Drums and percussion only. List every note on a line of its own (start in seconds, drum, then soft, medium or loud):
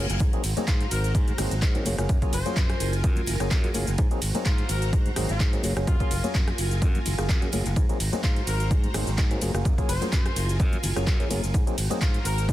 0.09 closed hi-hat soft
0.09 tambourine soft
0.09 shaker soft
0.20 kick loud
0.20 closed hi-hat medium
0.20 tambourine medium
0.20 low conga medium
0.20 shaker soft
0.33 closed hi-hat soft
0.33 tambourine soft
0.33 shaker soft
0.43 open hi-hat loud
0.43 ride medium
0.43 tambourine loud
0.43 shaker medium
0.57 closed hi-hat soft
0.57 tambourine soft
0.57 high conga loud
0.57 shaker soft
0.68 kick loud
0.68 clap loud
0.68 closed hi-hat medium
0.68 tambourine medium
0.68 shaker soft
0.81 closed hi-hat soft
0.81 tambourine soft
0.81 shaker soft
0.91 open hi-hat medium
0.91 ride medium
0.91 tambourine loud
0.91 shaker medium
1.04 closed hi-hat soft
1.04 tambourine soft
1.04 shaker soft
1.15 kick loud
1.15 closed hi-hat medium
1.15 tambourine medium
1.15 shaker soft
1.27 closed hi-hat soft
1.27 tambourine soft
1.27 high conga medium
1.27 low conga medium
1.27 shaker soft
1.38 cross-stick medium
1.38 open hi-hat loud
1.38 ride medium
1.38 tambourine medium
1.38 low conga loud
1.38 shaker medium
1.51 closed hi-hat soft
1.51 tambourine soft
1.51 shaker soft
1.62 kick loud
1.62 clap loud
1.62 closed hi-hat medium
1.62 tambourine medium
1.62 shaker soft
1.75 closed hi-hat soft
1.75 shaker soft
1.85 open hi-hat medium
1.85 ride medium
1.85 tambourine medium
1.85 high conga medium
1.85 shaker medium
1.98 cross-stick medium
1.98 closed hi-hat soft
1.98 tambourine soft
1.98 shaker soft
2.09 kick loud
2.09 closed hi-hat medium
2.09 tambourine medium
2.09 low conga medium
2.09 shaker soft
2.22 kick medium
2.22 closed hi-hat soft
2.22 tambourine soft
2.22 shaker soft
2.33 open hi-hat loud
2.33 ride medium
2.33 tambourine medium
2.33 shaker medium
2.46 closed hi-hat soft
2.46 tambourine soft
2.46 high conga medium
2.46 shaker soft
2.56 kick loud
2.56 clap loud
2.56 closed hi-hat medium
2.56 tambourine soft
2.56 shaker soft
2.69 cross-stick medium
2.69 closed hi-hat soft
2.69 tambourine soft
2.69 shaker soft
2.80 open hi-hat loud
2.80 ride medium
2.80 tambourine loud
2.80 shaker medium
2.92 closed hi-hat soft
2.92 tambourine soft
2.92 shaker soft
3.04 kick loud
3.04 closed hi-hat medium
3.04 tambourine medium
3.04 shaker soft
3.16 closed hi-hat soft
3.16 tambourine soft
3.16 high conga medium
3.16 low conga medium
3.16 shaker soft
3.26 open hi-hat loud
3.26 ride medium
3.26 tambourine medium
3.26 low conga medium
3.26 shaker medium
3.40 cross-stick medium
3.40 closed hi-hat soft
3.40 tambourine soft
3.40 shaker soft
3.50 kick loud
3.50 clap loud
3.50 closed hi-hat medium
3.50 tambourine medium
3.50 shaker soft
3.63 closed hi-hat soft
3.63 tambourine soft
3.63 shaker soft
3.74 open hi-hat medium
3.74 ride medium
3.74 tambourine medium
3.74 high conga medium
3.74 shaker medium
3.87 closed hi-hat soft
3.87 tambourine soft
3.87 shaker soft
3.98 kick loud
3.98 closed hi-hat medium
3.98 tambourine medium
3.98 low conga medium
3.98 shaker soft
4.10 closed hi-hat soft
4.10 tambourine soft
4.10 shaker soft
4.21 open hi-hat loud
4.21 ride medium
4.21 tambourine medium
4.21 shaker medium
4.34 closed hi-hat soft
4.34 tambourine soft
4.34 high conga medium
4.34 shaker soft
4.45 kick loud
4.45 clap loud
4.45 closed hi-hat medium
4.45 tambourine medium
4.45 shaker soft
4.58 closed hi-hat soft
4.58 tambourine soft
4.58 shaker soft
4.69 open hi-hat loud
4.69 ride medium
4.69 tambourine medium
4.69 shaker medium
4.82 closed hi-hat soft
4.82 tambourine soft
4.82 shaker soft
4.93 kick loud
4.93 closed hi-hat medium
4.93 tambourine medium
4.93 shaker soft
5.06 closed hi-hat soft
5.06 tambourine soft
5.06 high conga medium
5.06 low conga medium
5.06 shaker soft
5.16 cross-stick medium
5.16 open hi-hat loud
5.16 ride medium
5.16 tambourine medium
5.16 low conga loud
5.16 shaker medium
5.28 closed hi-hat soft
5.28 tambourine soft
5.28 shaker soft
5.40 kick loud
5.40 clap loud
5.40 closed hi-hat medium
5.40 tambourine medium
5.40 shaker soft
5.53 closed hi-hat soft
5.53 tambourine soft
5.53 shaker soft
5.63 open hi-hat medium
5.63 ride medium
5.63 tambourine medium
5.63 high conga medium
5.63 shaker medium
5.77 cross-stick medium
5.77 closed hi-hat soft
5.77 tambourine soft
5.77 shaker soft
5.87 kick loud
5.87 closed hi-hat medium
5.87 tambourine medium
5.87 low conga medium
5.87 shaker soft
6.00 kick medium
6.00 closed hi-hat soft
6.00 tambourine soft
6.00 shaker soft
6.11 open hi-hat loud
6.11 ride medium
6.11 tambourine loud
6.11 shaker medium
6.24 closed hi-hat soft
6.24 tambourine soft
6.24 high conga loud
6.24 shaker soft
6.34 kick loud
6.34 clap loud
6.34 closed hi-hat medium
6.34 tambourine medium
6.34 shaker soft
6.48 cross-stick medium
6.48 closed hi-hat soft
6.48 tambourine soft
6.48 shaker soft
6.58 open hi-hat loud
6.58 ride medium
6.58 tambourine medium
6.58 shaker medium
6.71 closed hi-hat soft
6.71 tambourine soft
6.71 shaker soft
6.82 kick loud
6.82 closed hi-hat medium
6.82 tambourine soft
6.82 shaker soft
6.95 closed hi-hat soft
6.95 tambourine soft
6.95 high conga medium
6.95 low conga medium
6.95 shaker soft
7.05 open hi-hat loud
7.05 ride medium
7.05 tambourine medium
7.05 low conga medium
7.05 shaker medium
7.18 cross-stick medium
7.18 closed hi-hat soft
7.18 tambourine soft
7.18 shaker soft
7.29 kick loud
7.29 clap loud
7.29 closed hi-hat medium
7.29 tambourine soft
7.29 shaker soft
7.42 closed hi-hat soft
7.42 tambourine soft
7.42 shaker soft
7.52 open hi-hat medium
7.52 ride medium
7.52 tambourine medium
7.52 high conga medium
7.52 shaker medium
7.66 closed hi-hat soft
7.66 tambourine soft
7.66 shaker soft
7.76 kick loud
7.76 closed hi-hat medium
7.76 tambourine soft
7.76 low conga medium
7.76 shaker soft
7.89 closed hi-hat soft
7.89 tambourine soft
7.89 shaker soft
8.00 open hi-hat loud
8.00 ride medium
8.00 tambourine medium
8.00 shaker medium
8.13 closed hi-hat soft
8.13 tambourine soft
8.13 high conga medium
8.13 shaker soft
8.24 kick loud
8.24 clap loud
8.24 closed hi-hat medium
8.24 tambourine soft
8.24 shaker soft
8.36 closed hi-hat soft
8.36 tambourine soft
8.36 shaker soft
8.47 open hi-hat medium
8.47 ride medium
8.47 tambourine medium
8.47 shaker medium
8.60 closed hi-hat soft
8.60 tambourine soft
8.60 shaker soft
8.71 kick loud
8.71 closed hi-hat medium
8.71 tambourine soft
8.71 shaker soft
8.84 closed hi-hat soft
8.84 tambourine soft
8.84 high conga medium
8.84 low conga medium
8.84 shaker soft
8.94 cross-stick medium
8.94 open hi-hat loud
8.94 ride medium
8.94 tambourine medium
8.94 low conga medium
8.94 shaker medium
9.07 closed hi-hat soft
9.07 tambourine soft
9.07 shaker soft
9.18 kick loud
9.18 clap loud
9.18 closed hi-hat medium
9.18 shaker soft
9.31 closed hi-hat soft
9.31 tambourine soft
9.31 shaker soft
9.41 open hi-hat medium
9.41 ride medium
9.41 tambourine medium
9.41 high conga medium
9.41 shaker medium
9.54 cross-stick medium
9.54 closed hi-hat soft
9.54 tambourine soft
9.54 shaker soft
9.65 kick loud
9.65 closed hi-hat medium
9.65 tambourine soft
9.65 low conga medium
9.65 shaker soft
9.78 kick medium
9.78 closed hi-hat soft
9.78 tambourine soft
9.78 shaker soft
9.89 open hi-hat loud
9.89 ride medium
9.89 tambourine medium
9.89 shaker medium
10.01 closed hi-hat soft
10.01 tambourine soft
10.01 high conga medium
10.01 shaker soft
10.12 kick loud
10.12 clap loud
10.12 closed hi-hat medium
10.12 tambourine medium
10.12 shaker soft
10.26 cross-stick medium
10.26 closed hi-hat soft
10.26 tambourine soft
10.26 shaker soft
10.36 open hi-hat medium
10.36 ride medium
10.36 tambourine loud
10.36 shaker medium
10.49 closed hi-hat soft
10.49 tambourine soft
10.49 shaker soft
10.59 kick loud
10.59 closed hi-hat medium
10.59 tambourine medium
10.59 shaker soft
10.72 closed hi-hat soft
10.72 tambourine soft
10.72 high conga medium
10.72 low conga medium
10.72 shaker soft
10.83 open hi-hat loud
10.83 ride medium
10.83 tambourine medium
10.83 low conga medium
10.83 shaker medium
10.96 cross-stick medium
10.96 closed hi-hat soft
10.96 tambourine soft
10.96 shaker soft
11.07 kick loud
11.07 clap loud
11.07 closed hi-hat medium
11.07 tambourine medium
11.07 shaker soft
11.20 closed hi-hat soft
11.20 tambourine soft
11.20 shaker soft
11.30 open hi-hat medium
11.30 ride medium
11.30 tambourine medium
11.30 high conga medium
11.30 shaker medium
11.43 closed hi-hat soft
11.43 tambourine soft
11.43 shaker soft
11.54 kick loud
11.54 closed hi-hat medium
11.54 tambourine medium
11.54 low conga medium
11.54 shaker soft
11.67 closed hi-hat soft
11.67 tambourine soft
11.67 shaker soft
11.78 open hi-hat loud
11.78 ride medium
11.78 tambourine loud
11.78 shaker medium
11.91 closed hi-hat soft
11.91 tambourine soft
11.91 high conga medium
11.91 shaker soft
12.01 kick loud
12.01 clap loud
12.01 closed hi-hat medium
12.01 shaker soft
12.14 closed hi-hat soft
12.14 tambourine soft
12.14 shaker soft
12.25 open hi-hat medium
12.25 ride medium
12.25 tambourine medium
12.25 shaker medium
12.38 closed hi-hat soft
12.38 tambourine soft
12.38 shaker soft
12.49 kick loud
12.49 closed hi-hat medium
12.49 tambourine medium
12.49 shaker soft